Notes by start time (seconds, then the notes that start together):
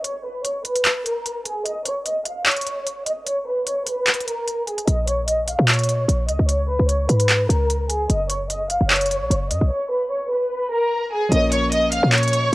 0.04 C#5 C#6, closed hi-hat
0.25 B4 B5
0.45 C#5 C#6, closed hi-hat
0.65 B4 B5, closed hi-hat
0.75 closed hi-hat
0.85 clap, closed hi-hat
1.05 A#4 A#5, closed hi-hat
1.26 closed hi-hat
1.45 G#4 G#5, closed hi-hat
1.66 D#5 D#6, closed hi-hat
1.86 C#5 C#6, closed hi-hat
2.06 D#5 D#6, closed hi-hat
2.26 F5 F6, closed hi-hat
2.46 C#5 C#6, clap, closed hi-hat
2.51 closed hi-hat
2.57 closed hi-hat
2.61 closed hi-hat
2.67 closed hi-hat
2.87 closed hi-hat
3.06 D#5 D#6, closed hi-hat
3.27 C#5 C#6, closed hi-hat
3.46 B4 B5
3.67 C#5 C#6, closed hi-hat
3.87 B4 B5, closed hi-hat
4.07 clap, closed hi-hat
4.14 closed hi-hat
4.21 closed hi-hat
4.27 A#4 A#5, closed hi-hat
4.48 closed hi-hat
4.67 G#4 G#5, closed hi-hat
4.78 closed hi-hat
4.88 A#1 D#5 D#6, closed hi-hat
5.08 C#5 C#6, closed hi-hat
5.28 D#5 D#6, closed hi-hat
5.48 F5 F6, closed hi-hat
5.59 A#2
5.68 C#5 C#6, clap, closed hi-hat
5.73 closed hi-hat
5.79 closed hi-hat
5.83 closed hi-hat
5.89 closed hi-hat
6.08 A#1, closed hi-hat
6.28 C#2 D#5 D#6, closed hi-hat
6.39 C#2
6.49 C#5 C#6, closed hi-hat
6.69 B4 B5
6.79 C#2
6.89 C#5 C#6, closed hi-hat
7.09 G#2 B4 B5, closed hi-hat
7.20 closed hi-hat
7.29 clap, closed hi-hat
7.49 C#2 A#4 A#5, closed hi-hat
7.70 closed hi-hat
7.89 G#4 G#5, closed hi-hat
8.10 F#1 D#5 D#6, closed hi-hat
8.30 C#5 C#6, closed hi-hat
8.50 D#5 D#6, closed hi-hat
8.70 F5 F6, closed hi-hat
8.81 F#1
8.90 C#5 C#6, clap, closed hi-hat
8.96 closed hi-hat
9.01 closed hi-hat
9.06 closed hi-hat
9.11 closed hi-hat
9.21 A#1
9.30 F#1, closed hi-hat
9.51 F#2 D#5 D#6, closed hi-hat
9.61 B1
9.71 C#5 C#6
9.91 B4 B5
10.11 C#5 C#6
10.31 B4 B5
10.72 A#4 A#5
11.12 G#4 G#5
11.29 A#1 F3 A#3 D#5 D#6, closed hi-hat
11.33 C#4 A#4
11.37 C#5
11.52 C#5 C#6, closed hi-hat
11.72 D#5 D#6, closed hi-hat
11.92 F5 F6, closed hi-hat
12.03 A#2
12.12 C#5 C#6, clap, closed hi-hat
12.18 closed hi-hat
12.23 closed hi-hat
12.28 closed hi-hat
12.33 closed hi-hat